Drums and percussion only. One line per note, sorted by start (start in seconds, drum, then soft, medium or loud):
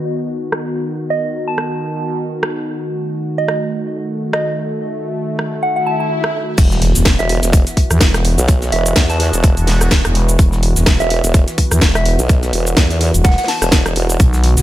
0.52 cross-stick medium
1.58 cross-stick medium
2.43 cross-stick medium
3.48 cross-stick medium
4.33 cross-stick medium
5.39 cross-stick medium
6.24 cross-stick medium
6.58 kick loud
6.58 closed hi-hat medium
6.58 crash loud
6.58 cabasa medium
6.71 snare medium
6.71 cabasa soft
6.82 closed hi-hat medium
6.82 open hi-hat loud
6.95 snare soft
6.95 closed hi-hat soft
6.95 cabasa medium
7.05 kick loud
7.05 snare loud
7.05 closed hi-hat medium
7.05 cabasa medium
7.19 snare soft
7.19 closed hi-hat soft
7.19 cabasa soft
7.29 closed hi-hat medium
7.29 open hi-hat loud
7.43 snare soft
7.43 closed hi-hat medium
7.43 cabasa medium
7.53 kick loud
7.53 closed hi-hat medium
7.53 cabasa medium
7.67 snare soft
7.67 closed hi-hat medium
7.67 cabasa soft
7.77 kick medium
7.77 closed hi-hat medium
7.77 open hi-hat loud
7.91 cross-stick medium
7.91 closed hi-hat soft
7.91 cabasa medium
8.01 kick loud
8.01 snare loud
8.01 closed hi-hat medium
8.01 cabasa medium
8.14 cross-stick medium
8.14 snare medium
8.14 closed hi-hat soft
8.14 cabasa soft
8.24 closed hi-hat medium
8.24 open hi-hat loud
8.38 closed hi-hat soft
8.38 cabasa medium
8.48 kick loud
8.48 closed hi-hat medium
8.48 cabasa medium
8.62 snare medium
8.62 closed hi-hat soft
8.62 cabasa soft
8.72 closed hi-hat medium
8.72 open hi-hat loud
8.86 closed hi-hat soft
8.86 cabasa medium
8.96 kick loud
8.96 snare loud
8.96 closed hi-hat medium
8.96 cabasa medium
9.10 snare soft
9.10 open hi-hat medium
9.10 cabasa soft
9.20 snare medium
9.20 closed hi-hat medium
9.20 open hi-hat loud
9.33 closed hi-hat medium
9.33 cabasa medium
9.43 kick loud
9.43 closed hi-hat medium
9.43 cabasa medium
9.57 closed hi-hat medium
9.57 closed hi-hat soft
9.57 cabasa soft
9.67 snare soft
9.67 open hi-hat loud
9.67 open hi-hat medium
9.81 cross-stick medium
9.81 closed hi-hat soft
9.81 cabasa medium
9.91 kick loud
9.91 snare loud
9.91 closed hi-hat medium
9.91 closed hi-hat loud
9.91 cabasa medium
10.05 cross-stick medium
10.05 closed hi-hat soft
10.05 cabasa soft
10.15 closed hi-hat medium
10.15 open hi-hat loud
10.29 closed hi-hat soft
10.29 cabasa medium
10.39 kick loud
10.39 closed hi-hat medium
10.39 cabasa medium
10.52 snare soft
10.52 cabasa soft
10.62 closed hi-hat medium
10.62 open hi-hat loud
10.76 snare medium
10.76 closed hi-hat soft
10.76 cabasa medium
10.86 kick loud
10.86 snare loud
10.86 closed hi-hat medium
10.86 cabasa medium
10.99 snare soft
10.99 closed hi-hat soft
10.99 cabasa soft
11.10 closed hi-hat medium
11.10 open hi-hat loud
11.23 snare soft
11.23 closed hi-hat medium
11.23 cabasa medium
11.34 kick loud
11.34 closed hi-hat medium
11.34 closed hi-hat loud
11.34 cabasa medium
11.48 snare soft
11.48 closed hi-hat medium
11.48 cabasa soft
11.58 kick medium
11.58 closed hi-hat medium
11.58 open hi-hat loud
11.71 cross-stick medium
11.71 closed hi-hat soft
11.71 cabasa medium
11.81 kick loud
11.81 snare loud
11.81 closed hi-hat medium
11.81 cabasa medium
11.95 cross-stick medium
11.95 snare medium
11.95 closed hi-hat soft
11.95 cabasa soft
12.05 closed hi-hat medium
12.05 open hi-hat loud
12.19 closed hi-hat soft
12.19 cabasa medium
12.29 kick loud
12.29 closed hi-hat medium
12.29 cabasa medium
12.43 snare soft
12.43 closed hi-hat soft
12.43 cabasa soft
12.53 closed hi-hat medium
12.53 open hi-hat loud
12.67 closed hi-hat soft
12.67 cabasa medium
12.77 kick loud
12.77 snare loud
12.77 closed hi-hat medium
12.77 cabasa medium
12.90 snare soft
12.90 open hi-hat medium
12.90 cabasa soft
13.00 snare medium
13.00 closed hi-hat medium
13.00 open hi-hat loud
13.14 closed hi-hat medium
13.14 cabasa medium
13.24 kick loud
13.24 snare medium
13.24 closed hi-hat medium
13.24 cabasa medium
13.31 snare medium
13.31 closed hi-hat medium
13.38 snare medium
13.38 closed hi-hat medium
13.38 cabasa soft
13.43 snare medium
13.43 closed hi-hat medium
13.48 snare soft
13.48 open hi-hat loud
13.48 open hi-hat medium
13.62 cross-stick medium
13.62 closed hi-hat soft
13.62 cabasa medium
13.72 kick loud
13.72 snare loud
13.72 closed hi-hat medium
13.72 cabasa medium
13.86 cross-stick medium
13.86 closed hi-hat soft
13.86 cabasa soft
13.96 closed hi-hat medium
13.96 open hi-hat loud
14.09 closed hi-hat soft
14.09 cabasa medium
14.20 kick loud
14.20 closed hi-hat medium
14.20 closed hi-hat loud
14.20 cabasa medium
14.33 snare medium
14.33 cabasa soft
14.44 closed hi-hat medium
14.44 open hi-hat loud
14.57 snare medium
14.57 closed hi-hat soft
14.57 cabasa medium